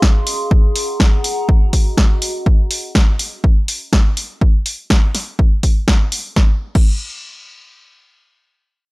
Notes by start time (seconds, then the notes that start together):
Already playing: C#4 G#4 F5 C6
0.02 kick, snare
0.27 open hi-hat
0.51 kick
0.72 F#5 A#5, open hi-hat
1.00 kick, snare
1.24 open hi-hat
1.48 F#4, kick
1.73 kick, open hi-hat
1.80 D#5
1.98 kick, snare
2.22 open hi-hat
2.46 kick
2.71 open hi-hat
2.95 kick, snare
3.19 open hi-hat
3.44 kick
3.68 open hi-hat
3.93 kick, snare
4.17 open hi-hat
4.41 kick
4.66 open hi-hat
4.90 kick, snare
5.15 snare, open hi-hat
5.39 kick
5.63 kick, open hi-hat
5.88 kick, snare
6.12 open hi-hat
6.36 kick, snare
6.75 kick, crash